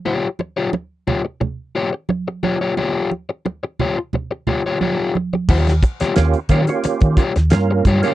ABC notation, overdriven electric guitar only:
X:1
M:4/4
L:1/16
Q:1/4=88
K:Ebmix
V:1 name="Overdriven electric guitar"
[FGd] z2 [FGd] z2 [FGd] z3 [FGd] z3 [FGd] [FGd] | [FGd]2 z4 [FGd] z3 [FGd] [FGd] [FGd]2 z2 | [FGd] z2 [FGd] z2 [FGd] z3 [FGd] z3 [FGd] [FGd] |]